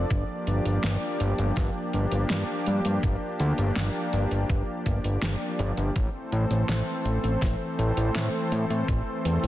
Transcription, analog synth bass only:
0, 0, Header, 1, 2, 480
1, 0, Start_track
1, 0, Tempo, 731707
1, 69, Time_signature, 4, 2, 24, 8
1, 6212, End_track
2, 0, Start_track
2, 0, Title_t, "Analog synth bass"
2, 0, Program_c, 0, 38
2, 70, Note_on_c, 0, 31, 102
2, 157, Note_off_c, 0, 31, 0
2, 310, Note_on_c, 0, 31, 90
2, 397, Note_off_c, 0, 31, 0
2, 430, Note_on_c, 0, 31, 81
2, 517, Note_off_c, 0, 31, 0
2, 551, Note_on_c, 0, 31, 104
2, 637, Note_off_c, 0, 31, 0
2, 791, Note_on_c, 0, 31, 93
2, 877, Note_off_c, 0, 31, 0
2, 911, Note_on_c, 0, 31, 81
2, 997, Note_off_c, 0, 31, 0
2, 1029, Note_on_c, 0, 31, 94
2, 1116, Note_off_c, 0, 31, 0
2, 1272, Note_on_c, 0, 31, 91
2, 1358, Note_off_c, 0, 31, 0
2, 1392, Note_on_c, 0, 31, 84
2, 1478, Note_off_c, 0, 31, 0
2, 1513, Note_on_c, 0, 43, 96
2, 1598, Note_off_c, 0, 43, 0
2, 1753, Note_on_c, 0, 43, 94
2, 1839, Note_off_c, 0, 43, 0
2, 1873, Note_on_c, 0, 43, 82
2, 1958, Note_off_c, 0, 43, 0
2, 1990, Note_on_c, 0, 31, 99
2, 2077, Note_off_c, 0, 31, 0
2, 2231, Note_on_c, 0, 38, 96
2, 2317, Note_off_c, 0, 38, 0
2, 2353, Note_on_c, 0, 31, 82
2, 2438, Note_off_c, 0, 31, 0
2, 2472, Note_on_c, 0, 31, 103
2, 2558, Note_off_c, 0, 31, 0
2, 2711, Note_on_c, 0, 31, 95
2, 2798, Note_off_c, 0, 31, 0
2, 2831, Note_on_c, 0, 31, 83
2, 2917, Note_off_c, 0, 31, 0
2, 2949, Note_on_c, 0, 31, 94
2, 3036, Note_off_c, 0, 31, 0
2, 3190, Note_on_c, 0, 31, 93
2, 3277, Note_off_c, 0, 31, 0
2, 3311, Note_on_c, 0, 31, 83
2, 3397, Note_off_c, 0, 31, 0
2, 3429, Note_on_c, 0, 31, 93
2, 3516, Note_off_c, 0, 31, 0
2, 3669, Note_on_c, 0, 31, 93
2, 3756, Note_off_c, 0, 31, 0
2, 3790, Note_on_c, 0, 31, 82
2, 3877, Note_off_c, 0, 31, 0
2, 3909, Note_on_c, 0, 33, 105
2, 3996, Note_off_c, 0, 33, 0
2, 4150, Note_on_c, 0, 33, 95
2, 4237, Note_off_c, 0, 33, 0
2, 4269, Note_on_c, 0, 33, 82
2, 4356, Note_off_c, 0, 33, 0
2, 4388, Note_on_c, 0, 33, 102
2, 4475, Note_off_c, 0, 33, 0
2, 4627, Note_on_c, 0, 33, 92
2, 4715, Note_off_c, 0, 33, 0
2, 4749, Note_on_c, 0, 33, 82
2, 4836, Note_off_c, 0, 33, 0
2, 4868, Note_on_c, 0, 33, 97
2, 4956, Note_off_c, 0, 33, 0
2, 5108, Note_on_c, 0, 33, 96
2, 5196, Note_off_c, 0, 33, 0
2, 5230, Note_on_c, 0, 33, 77
2, 5317, Note_off_c, 0, 33, 0
2, 5348, Note_on_c, 0, 45, 99
2, 5436, Note_off_c, 0, 45, 0
2, 5589, Note_on_c, 0, 45, 94
2, 5676, Note_off_c, 0, 45, 0
2, 5710, Note_on_c, 0, 45, 81
2, 5797, Note_off_c, 0, 45, 0
2, 5828, Note_on_c, 0, 33, 97
2, 5916, Note_off_c, 0, 33, 0
2, 6069, Note_on_c, 0, 40, 91
2, 6156, Note_off_c, 0, 40, 0
2, 6190, Note_on_c, 0, 33, 83
2, 6212, Note_off_c, 0, 33, 0
2, 6212, End_track
0, 0, End_of_file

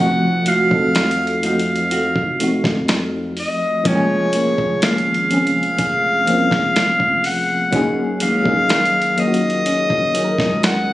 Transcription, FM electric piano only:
0, 0, Header, 1, 2, 480
1, 0, Start_track
1, 0, Tempo, 967742
1, 1912, Time_signature, 4, 2, 24, 8
1, 5421, End_track
2, 0, Start_track
2, 0, Title_t, "FM electric piano"
2, 0, Program_c, 0, 5
2, 0, Note_on_c, 0, 53, 106
2, 0, Note_on_c, 0, 57, 91
2, 0, Note_on_c, 0, 60, 95
2, 2, Note_on_c, 0, 63, 94
2, 8, Note_on_c, 0, 66, 115
2, 88, Control_c, 0, 64, 127
2, 264, Note_off_c, 0, 53, 0
2, 267, Note_off_c, 0, 57, 0
2, 271, Note_off_c, 0, 60, 0
2, 273, Note_off_c, 0, 63, 0
2, 277, Note_off_c, 0, 66, 0
2, 344, Note_on_c, 0, 53, 77
2, 349, Note_on_c, 0, 57, 70
2, 355, Note_on_c, 0, 60, 65
2, 361, Note_on_c, 0, 63, 72
2, 368, Note_on_c, 0, 69, 83
2, 625, Note_off_c, 0, 53, 0
2, 627, Note_off_c, 0, 57, 0
2, 630, Note_off_c, 0, 60, 0
2, 633, Note_off_c, 0, 63, 0
2, 637, Note_off_c, 0, 69, 0
2, 702, Note_on_c, 0, 53, 72
2, 709, Note_on_c, 0, 57, 67
2, 715, Note_on_c, 0, 60, 66
2, 721, Note_on_c, 0, 63, 70
2, 727, Note_on_c, 0, 66, 82
2, 1076, Note_off_c, 0, 53, 0
2, 1080, Note_off_c, 0, 57, 0
2, 1083, Note_off_c, 0, 60, 0
2, 1086, Note_off_c, 0, 63, 0
2, 1089, Note_off_c, 0, 66, 0
2, 1182, Note_on_c, 0, 53, 67
2, 1188, Note_on_c, 0, 57, 61
2, 1195, Note_on_c, 0, 60, 59
2, 1201, Note_on_c, 0, 63, 64
2, 1207, Note_on_c, 0, 66, 74
2, 1741, Note_off_c, 0, 53, 0
2, 1744, Note_off_c, 0, 57, 0
2, 1747, Note_off_c, 0, 60, 0
2, 1750, Note_off_c, 0, 63, 0
2, 1753, Note_off_c, 0, 66, 0
2, 1903, Note_on_c, 0, 53, 98
2, 1909, Note_on_c, 0, 58, 93
2, 1915, Note_on_c, 0, 56, 91
2, 1918, Control_c, 0, 64, 0
2, 1922, Note_on_c, 0, 61, 98
2, 1927, Note_on_c, 0, 67, 89
2, 1952, Note_off_c, 0, 67, 0
2, 1960, Note_on_c, 0, 68, 112
2, 2006, Control_c, 0, 64, 127
2, 2461, Note_off_c, 0, 53, 0
2, 2464, Note_off_c, 0, 58, 0
2, 2467, Note_off_c, 0, 56, 0
2, 2471, Note_off_c, 0, 61, 0
2, 2490, Note_off_c, 0, 68, 0
2, 2623, Note_on_c, 0, 53, 75
2, 2629, Note_on_c, 0, 58, 68
2, 2635, Note_on_c, 0, 60, 68
2, 2642, Note_on_c, 0, 61, 69
2, 2648, Note_on_c, 0, 68, 82
2, 2997, Note_off_c, 0, 53, 0
2, 3000, Note_off_c, 0, 58, 0
2, 3003, Note_off_c, 0, 60, 0
2, 3006, Note_off_c, 0, 61, 0
2, 3009, Note_off_c, 0, 68, 0
2, 3102, Note_on_c, 0, 53, 82
2, 3109, Note_on_c, 0, 58, 75
2, 3115, Note_on_c, 0, 60, 75
2, 3121, Note_on_c, 0, 61, 72
2, 3128, Note_on_c, 0, 65, 88
2, 3661, Note_off_c, 0, 53, 0
2, 3664, Note_off_c, 0, 58, 0
2, 3667, Note_off_c, 0, 60, 0
2, 3670, Note_off_c, 0, 61, 0
2, 3673, Note_off_c, 0, 65, 0
2, 3823, Note_on_c, 0, 54, 106
2, 3829, Note_on_c, 0, 58, 96
2, 3836, Note_on_c, 0, 61, 93
2, 3838, Control_c, 0, 64, 0
2, 3842, Note_on_c, 0, 63, 90
2, 3848, Note_on_c, 0, 68, 116
2, 3922, Control_c, 0, 64, 127
2, 4104, Note_off_c, 0, 54, 0
2, 4107, Note_off_c, 0, 58, 0
2, 4111, Note_off_c, 0, 61, 0
2, 4114, Note_off_c, 0, 63, 0
2, 4117, Note_off_c, 0, 68, 0
2, 4182, Note_on_c, 0, 54, 74
2, 4189, Note_on_c, 0, 58, 69
2, 4195, Note_on_c, 0, 61, 70
2, 4201, Note_on_c, 0, 63, 70
2, 4207, Note_on_c, 0, 68, 88
2, 4464, Note_off_c, 0, 54, 0
2, 4467, Note_off_c, 0, 58, 0
2, 4470, Note_off_c, 0, 61, 0
2, 4473, Note_off_c, 0, 63, 0
2, 4476, Note_off_c, 0, 68, 0
2, 4543, Note_on_c, 0, 54, 76
2, 4549, Note_on_c, 0, 58, 72
2, 4556, Note_on_c, 0, 61, 69
2, 4561, Note_on_c, 0, 63, 68
2, 4568, Note_on_c, 0, 65, 64
2, 4592, Note_off_c, 0, 65, 0
2, 4601, Note_on_c, 0, 66, 84
2, 4916, Note_off_c, 0, 54, 0
2, 4920, Note_off_c, 0, 58, 0
2, 4923, Note_off_c, 0, 61, 0
2, 4926, Note_off_c, 0, 63, 0
2, 4945, Note_off_c, 0, 66, 0
2, 5024, Note_on_c, 0, 54, 68
2, 5031, Note_on_c, 0, 58, 60
2, 5037, Note_on_c, 0, 61, 66
2, 5043, Note_on_c, 0, 63, 63
2, 5049, Note_on_c, 0, 68, 61
2, 5073, Note_off_c, 0, 68, 0
2, 5081, Note_on_c, 0, 70, 74
2, 5421, Note_off_c, 0, 54, 0
2, 5421, Note_off_c, 0, 58, 0
2, 5421, Note_off_c, 0, 61, 0
2, 5421, Note_off_c, 0, 63, 0
2, 5421, Note_off_c, 0, 70, 0
2, 5421, End_track
0, 0, End_of_file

